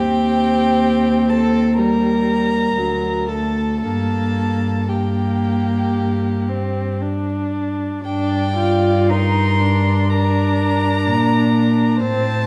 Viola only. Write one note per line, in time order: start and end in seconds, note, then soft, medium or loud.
0.00 1.80 C4 medium
1.78 2.79 G3 medium
2.78 3.30 F#3 medium
3.31 3.86 A3 medium
3.85 4.90 A#3 medium
4.91 6.51 A#3 medium
6.49 7.03 C4 medium
7.01 8.04 D4 medium
8.04 8.53 D4 medium
8.57 9.11 F4 medium
9.10 9.61 D#4 medium
9.60 12.02 D4 medium
12.01 12.47 C4 medium